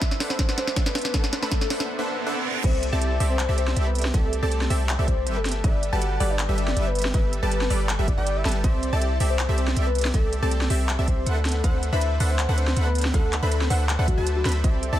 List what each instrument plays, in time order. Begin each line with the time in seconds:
Already playing: supersaw synth D4 A4 B4 C5 E5 B5, soft synth lead E5, riser
0.01 kick, snare, closed hi-hat
0.11 snare
0.20 supersaw synth D4 A4 B4 C5 E5 F#5, snare, open hi-hat
0.30 soft synth lead C5, snare
0.39 kick, snare, closed hi-hat
0.49 supersaw synth D4 A4 B4 C5 E5 F#5, snare
0.58 soft synth lead C5, snare, closed hi-hat
0.67 snare
0.76 supersaw synth D4 A4 B4 C5 E5 F#5, kick, snare, closed hi-hat
0.86 soft synth lead B4, snare
0.95 snare, closed hi-hat
0.98 closed hi-hat
1.01 snare, closed hi-hat
1.14 supersaw synth D4 A4 B4 C5 E5 F#5, soft synth lead A4, kick, snare, closed hi-hat
1.24 snare
1.33 snare, closed hi-hat
1.43 supersaw synth D4 A4 B4 C5 E5 B5, soft synth lead A4, snare
1.51 kick, snare, closed hi-hat
1.61 snare
1.70 supersaw synth D4 A4 B4 C5 E5 F#5, snare, open hi-hat
1.80 snare
1.89 reverse cymbal
1.99 supersaw synth D4 A4 B4 C5 E5 F#5
2.27 supersaw synth D4 A4 B4 C5 E5 F#5
2.64 808-style bass C2, supersaw synth C4 G4 A4 D5 E5, soft synth lead C5, synth pluck E5, kick, closed hi-hat, crash
2.83 closed hi-hat
2.92 808-style bass C2, supersaw synth C4 G4 A4 D5 A5, soft synth lead E5, synth pluck A5
3.02 closed hi-hat
3.20 808-style bass C2, supersaw synth C4 G4 A4 D5 E5, synth pluck E5, open hi-hat
3.30 soft synth lead C5
3.39 clap, closed hi-hat
3.49 808-style bass C2, supersaw synth C4 G4 A4 D5 E5, synth pluck E5
3.58 soft synth lead C5, closed hi-hat
3.68 snare
3.76 808-style bass C2, supersaw synth C4 G4 A4 D5 E5, synth pluck E5, closed hi-hat
3.86 soft synth lead B4
3.95 closed hi-hat
3.98 closed hi-hat
4.02 snare, closed hi-hat
4.14 808-style bass C2, supersaw synth C4 G4 A4 D5 E5, soft synth lead A4, synth pluck E5, kick, closed hi-hat
4.33 closed hi-hat
4.43 808-style bass C2, supersaw synth C4 G4 A4 D5 A5, soft synth lead A4, synth pluck A5
4.52 closed hi-hat
4.61 snare
4.70 808-style bass C2, supersaw synth C4 G4 A4 D5 E5, synth pluck E5, open hi-hat
4.89 clap, closed hi-hat
4.99 808-style bass C2, supersaw synth C4 G4 A4 D5 E5, synth pluck E5
5.08 soft synth lead C5, kick, closed hi-hat
5.26 808-style bass G1, supersaw synth G3 G4 A4 B4 E5, synth pluck E5, closed hi-hat
5.36 soft synth lead A4
5.45 snare, closed hi-hat
5.49 closed hi-hat
5.52 closed hi-hat
5.64 808-style bass G1, supersaw synth G3 G4 A4 B4 E5, soft synth lead D5, synth pluck E5, kick, closed hi-hat
5.83 closed hi-hat
5.93 808-style bass G1, supersaw synth G3 G4 A4 B4 A5, soft synth lead F#5, synth pluck A5
6.02 closed hi-hat
6.20 808-style bass G1, supersaw synth G3 G4 A4 B4 D5, synth pluck D5, open hi-hat
6.30 soft synth lead D5
6.39 clap, closed hi-hat
6.49 808-style bass G1, supersaw synth G3 G4 A4 B4 E5, synth pluck E5
6.58 soft synth lead D5, closed hi-hat
6.68 snare
6.77 808-style bass G1, supersaw synth G3 G4 A4 B4 E5, synth pluck E5, closed hi-hat
6.86 soft synth lead B4
6.95 closed hi-hat
6.99 closed hi-hat
7.02 snare, closed hi-hat
7.14 808-style bass G1, supersaw synth G3 G4 A4 B4 E5, soft synth lead B4, synth pluck E5, kick, closed hi-hat
7.33 closed hi-hat
7.43 808-style bass G1, supersaw synth G3 G4 A4 B4 A5, soft synth lead B4, synth pluck A5
7.52 closed hi-hat
7.61 snare
7.70 808-style bass G1, supersaw synth G3 G4 A4 B4 D5, synth pluck D5, open hi-hat
7.89 clap, closed hi-hat
7.99 808-style bass G1, supersaw synth G3 G4 A4 B4 E5, synth pluck E5
8.08 soft synth lead D5, kick, closed hi-hat
8.18 808-style bass G1, supersaw synth G3 G4 A4 B4 G5, synth pluck G5
8.27 closed hi-hat
8.36 soft synth lead E5
8.45 808-style bass G1, supersaw synth G3 G4 A4 B4 A5, synth pluck A5, snare, closed hi-hat
8.49 closed hi-hat
8.52 closed hi-hat
8.64 808-style bass C2, supersaw synth C4 G4 A4 D5 E5, soft synth lead C5, synth pluck E5, kick, closed hi-hat
8.83 closed hi-hat
8.93 808-style bass C2, supersaw synth C4 G4 A4 D5 A5, soft synth lead E5, synth pluck A5
9.02 closed hi-hat
9.20 808-style bass C2, supersaw synth C4 G4 A4 D5 E5, synth pluck E5, open hi-hat
9.30 soft synth lead C5
9.39 clap, closed hi-hat
9.49 808-style bass C2, supersaw synth C4 G4 A4 D5 E5, synth pluck E5
9.58 soft synth lead C5, closed hi-hat
9.68 snare
9.76 808-style bass C2, supersaw synth C4 G4 A4 D5 E5, synth pluck E5, closed hi-hat
9.86 soft synth lead B4
9.95 closed hi-hat
9.98 closed hi-hat
10.01 snare, closed hi-hat
10.14 808-style bass C2, supersaw synth C4 G4 A4 D5 E5, soft synth lead A4, synth pluck E5, kick, closed hi-hat
10.33 closed hi-hat
10.42 808-style bass C2, supersaw synth C4 G4 A4 D5 A5, soft synth lead A4, synth pluck A5
10.51 closed hi-hat
10.61 snare
10.70 808-style bass C2, supersaw synth C4 G4 A4 D5 E5, synth pluck E5, open hi-hat
10.89 clap, closed hi-hat
10.99 808-style bass C2, supersaw synth C4 G4 A4 D5 E5, synth pluck E5
11.08 soft synth lead C5, kick, closed hi-hat
11.26 808-style bass D2, supersaw synth D4 A4 B4 C5 E5 F#5, synth pluck F#5, closed hi-hat
11.36 soft synth lead A4
11.45 snare, closed hi-hat
11.49 closed hi-hat
11.52 closed hi-hat
11.64 808-style bass D2, supersaw synth D4 A4 B4 C5 E5 F#5, soft synth lead C5, synth pluck F#5, kick, closed hi-hat
11.83 closed hi-hat
11.92 808-style bass D2, supersaw synth D4 A4 B4 C5 E5 B5, soft synth lead E5, synth pluck B5
12.01 closed hi-hat
12.20 808-style bass D2, supersaw synth D4 A4 B4 C5 E5 F#5, synth pluck F#5, open hi-hat
12.30 soft synth lead C5
12.39 clap, closed hi-hat
12.49 808-style bass D2, supersaw synth D4 A4 B4 C5 E5 F#5, synth pluck F#5
12.58 soft synth lead C5, closed hi-hat
12.68 snare
12.76 808-style bass D2, supersaw synth D4 A4 B4 C5 E5 F#5, synth pluck F#5, closed hi-hat
12.86 soft synth lead B4
12.95 closed hi-hat
12.98 closed hi-hat
13.01 snare, closed hi-hat
13.14 808-style bass D2, supersaw synth D4 A4 B4 C5 E5 F#5, soft synth lead A4, synth pluck F#5, kick, closed hi-hat
13.33 clap, closed hi-hat
13.43 808-style bass D2, supersaw synth D4 A4 B4 C5 E5 B5, soft synth lead A4, synth pluck B5
13.52 closed hi-hat
13.61 snare
13.70 808-style bass D2, supersaw synth D4 A4 B4 C5 E5 F#5, synth pluck F#5, open hi-hat
13.89 clap, closed hi-hat
13.99 808-style bass D2, supersaw synth D4 A4 B4 C5 E5 F#5, synth pluck F#5
14.08 soft synth lead F#4, kick, closed hi-hat
14.18 808-style bass D2, supersaw synth D4 A4 B4 C5 E5 A5, synth pluck A5
14.27 closed hi-hat
14.36 soft synth lead F#4
14.45 808-style bass D2, supersaw synth D4 A4 B4 C5 E5 B5, synth pluck B5, snare, closed hi-hat
14.49 closed hi-hat
14.52 closed hi-hat
14.64 808-style bass C2, supersaw synth C4 G4 A4 D5 E5, soft synth lead C5, synth pluck E5, kick, closed hi-hat
14.83 closed hi-hat
14.92 808-style bass C2, supersaw synth C4 G4 A4 D5 A5, soft synth lead E5, synth pluck A5